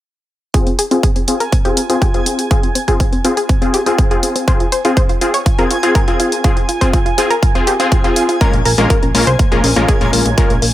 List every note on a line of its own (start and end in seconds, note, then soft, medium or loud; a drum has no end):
0.54 0.72 C4 medium
0.54 0.72 F4 medium
0.54 0.72 G#4 medium
0.54 0.61 G#4 medium
0.54 10.74 G#5 medium
0.54 kick loud
0.54 closed hi-hat soft
0.67 0.74 C4 medium
0.67 closed hi-hat soft
0.79 0.86 G#4 medium
0.79 closed hi-hat medium
0.91 1.09 C4 medium
0.91 0.98 C4 medium
0.91 1.09 F4 medium
0.91 1.09 G#4 medium
0.91 closed hi-hat soft
1.03 1.11 G#4 medium
1.03 kick loud
1.03 closed hi-hat soft
1.16 1.23 C4 medium
1.16 closed hi-hat soft
1.28 1.39 C4 medium
1.28 1.35 C4 medium
1.28 1.39 F4 medium
1.28 1.39 G#4 medium
1.28 closed hi-hat medium
1.40 1.47 A#4 medium
1.40 closed hi-hat soft
1.52 1.60 C4 medium
1.52 kick loud
1.52 closed hi-hat soft
1.65 1.82 C4 medium
1.65 1.82 F4 medium
1.65 1.72 G4 medium
1.65 1.82 G#4 loud
1.65 closed hi-hat soft
1.77 1.84 C4 medium
1.77 closed hi-hat medium
1.89 1.97 C4 medium
1.89 2.11 C4 medium
1.89 2.11 F4 medium
1.89 2.11 G#4 loud
1.89 closed hi-hat soft
2.02 2.09 G4 medium
2.02 kick loud
2.02 closed hi-hat soft
2.14 2.48 C4 medium
2.14 2.21 C4 medium
2.14 2.48 F4 medium
2.14 2.48 G#4 medium
2.14 closed hi-hat soft
2.26 2.34 C4 medium
2.26 closed hi-hat medium
2.39 closed hi-hat soft
2.51 2.68 C4 medium
2.51 2.58 C4 medium
2.51 2.68 F4 medium
2.51 2.68 G#4 medium
2.51 kick loud
2.51 closed hi-hat soft
2.63 2.70 C4 medium
2.63 closed hi-hat soft
2.75 2.83 C4 medium
2.75 closed hi-hat medium
2.88 3.05 C4 medium
2.88 3.05 F4 medium
2.88 3.05 G#4 medium
2.88 2.95 G#4 medium
2.88 kick medium
2.88 closed hi-hat soft
3.00 3.07 C4 medium
3.00 kick loud
3.00 closed hi-hat soft
3.13 3.20 C4 medium
3.13 closed hi-hat soft
3.25 3.36 C4 medium
3.25 3.32 C4 medium
3.25 3.36 F4 medium
3.25 3.36 G#4 medium
3.25 closed hi-hat medium
3.37 3.44 G#4 medium
3.37 closed hi-hat soft
3.49 3.57 C4 medium
3.49 kick loud
3.49 closed hi-hat soft
3.62 3.69 C4 medium
3.62 3.79 C4 medium
3.62 3.79 F4 medium
3.62 3.79 G#4 loud
3.62 closed hi-hat soft
3.74 3.81 G4 medium
3.74 closed hi-hat medium
3.86 3.93 C4 medium
3.86 4.08 C4 medium
3.86 4.08 F4 medium
3.86 4.08 G#4 loud
3.86 closed hi-hat soft
3.98 4.06 C4 medium
3.98 kick loud
3.98 closed hi-hat soft
4.11 4.45 C4 medium
4.11 4.45 F4 medium
4.11 4.18 G#4 medium
4.11 4.45 G#4 medium
4.11 closed hi-hat soft
4.23 4.30 C4 medium
4.23 closed hi-hat medium
4.36 4.43 C4 medium
4.36 closed hi-hat soft
4.48 4.65 C4 medium
4.48 4.65 F4 medium
4.48 4.65 G#4 medium
4.48 4.55 C5 medium
4.48 kick loud
4.48 closed hi-hat soft
4.60 4.67 F4 medium
4.60 closed hi-hat soft
4.72 4.80 C5 medium
4.72 closed hi-hat medium
4.85 5.02 C4 medium
4.85 5.02 F4 medium
4.85 4.92 F4 medium
4.85 5.02 G#4 medium
4.85 closed hi-hat soft
4.97 5.04 C5 medium
4.97 kick loud
4.97 closed hi-hat soft
5.09 5.16 F4 medium
5.09 closed hi-hat soft
5.21 5.33 C4 medium
5.21 5.33 F4 medium
5.21 5.29 F4 medium
5.21 5.33 G#4 medium
5.21 closed hi-hat medium
5.34 5.41 C#5 medium
5.34 closed hi-hat soft
5.46 5.53 F4 medium
5.46 kick loud
5.46 closed hi-hat soft
5.59 5.76 C4 medium
5.59 5.76 F4 medium
5.59 5.76 G#4 loud
5.59 5.66 A#4 medium
5.59 closed hi-hat soft
5.71 5.78 F4 medium
5.71 closed hi-hat medium
5.83 6.05 C4 medium
5.83 6.05 F4 medium
5.83 5.90 F4 medium
5.83 6.05 G#4 loud
5.83 closed hi-hat soft
5.95 6.03 A#4 medium
5.95 kick loud
5.95 closed hi-hat soft
6.08 6.42 C4 medium
6.08 6.15 F4 medium
6.08 6.42 F4 medium
6.08 6.42 G#4 medium
6.08 closed hi-hat soft
6.20 6.27 F4 medium
6.20 closed hi-hat medium
6.32 closed hi-hat soft
6.44 6.62 C4 medium
6.44 6.52 F4 medium
6.44 6.62 F4 medium
6.44 6.62 G#4 medium
6.44 kick loud
6.44 closed hi-hat soft
6.57 6.64 F4 medium
6.57 closed hi-hat soft
6.69 6.76 F4 medium
6.69 closed hi-hat medium
6.81 6.99 C4 medium
6.81 6.99 F4 medium
6.81 6.99 G#4 medium
6.81 6.88 C5 medium
6.81 kick medium
6.81 closed hi-hat soft
6.93 7.01 F4 medium
6.93 kick loud
6.93 closed hi-hat soft
7.06 7.13 F4 medium
7.06 closed hi-hat soft
7.18 7.29 C4 medium
7.18 7.25 F4 medium
7.18 7.29 F4 medium
7.18 7.29 G#4 medium
7.18 closed hi-hat medium
7.31 7.38 A#4 medium
7.31 closed hi-hat soft
7.42 7.50 F4 medium
7.42 kick loud
7.42 closed hi-hat soft
7.55 7.73 C4 medium
7.55 7.62 F4 medium
7.55 7.73 F4 medium
7.55 7.73 G#4 loud
7.55 closed hi-hat soft
7.67 7.75 G4 medium
7.67 closed hi-hat medium
7.80 8.01 C4 medium
7.80 7.87 F4 medium
7.80 8.01 F4 medium
7.80 8.01 G#4 loud
7.80 closed hi-hat soft
7.92 7.99 F4 medium
7.92 kick loud
7.92 closed hi-hat soft
8.04 8.38 C4 medium
8.04 8.11 F4 medium
8.04 8.38 F4 medium
8.04 8.38 G#4 medium
8.04 closed hi-hat soft
8.16 8.24 F4 medium
8.16 closed hi-hat medium
8.29 8.36 F4 medium
8.29 closed hi-hat soft
8.41 8.59 G#3 medium
8.41 8.59 A#3 medium
8.41 8.59 C#4 medium
8.41 8.59 F4 medium
8.41 8.48 A#4 medium
8.41 8.59 A#4 medium
8.41 kick loud
8.41 closed hi-hat soft
8.53 8.62 A#1 medium
8.53 8.60 A#3 medium
8.53 closed hi-hat soft
8.65 8.75 A#1 medium
8.65 8.73 A#4 medium
8.65 open hi-hat medium
8.78 8.87 A#1 medium
8.78 8.95 G#3 medium
8.78 8.85 A#3 medium
8.78 8.95 A#3 medium
8.78 8.95 C#4 medium
8.78 8.95 F4 medium
8.78 8.95 A#4 medium
8.78 closed hi-hat soft
8.90 8.97 A#4 medium
8.90 kick loud
8.90 closed hi-hat soft
9.03 9.12 A#1 medium
9.03 9.10 A#3 medium
9.03 closed hi-hat soft
9.03 high conga medium
9.15 9.24 A#1 medium
9.15 9.26 G#3 medium
9.15 9.22 A#3 medium
9.15 9.26 A#3 medium
9.15 9.26 C#4 medium
9.15 9.26 F4 medium
9.15 9.26 A#4 medium
9.15 open hi-hat medium
9.27 9.36 C2 medium
9.27 9.34 C5 medium
9.27 closed hi-hat soft
9.39 9.47 A#3 medium
9.39 kick loud
9.39 closed hi-hat soft
9.52 9.61 A#1 medium
9.52 9.69 G#3 medium
9.52 9.69 A#3 medium
9.52 9.69 C#4 medium
9.52 9.69 F4 medium
9.52 9.59 G#4 medium
9.52 9.69 A#4 loud
9.52 closed hi-hat soft
9.64 9.73 A#1 medium
9.64 9.71 A#3 medium
9.64 open hi-hat loud
9.64 high conga medium
9.76 9.85 A#1 medium
9.76 9.98 G#3 medium
9.76 9.98 A#3 medium
9.76 9.83 A#3 medium
9.76 9.98 C#4 medium
9.76 9.98 F4 medium
9.76 9.98 A#4 loud
9.76 closed hi-hat soft
9.88 9.96 G#4 medium
9.88 kick loud
9.88 closed hi-hat soft
10.01 10.10 A#1 medium
10.01 10.35 G#3 medium
10.01 10.08 A#3 medium
10.01 10.35 A#3 medium
10.01 10.35 C#4 medium
10.01 10.35 F4 medium
10.01 10.35 A#4 medium
10.01 closed hi-hat soft
10.13 10.22 A#1 loud
10.13 10.20 A#3 medium
10.13 open hi-hat medium
10.26 10.35 A#1 medium
10.26 closed hi-hat soft
10.37 10.55 G#3 medium
10.37 10.45 A#3 medium
10.37 10.55 A#3 medium
10.37 10.55 C#4 medium
10.37 10.55 F4 medium
10.37 10.55 A#4 medium
10.37 kick loud
10.37 closed hi-hat soft
10.50 10.59 A#1 medium
10.50 10.57 A#3 medium
10.50 closed hi-hat soft
10.62 10.72 A#1 loud
10.62 10.70 A#3 medium
10.62 open hi-hat medium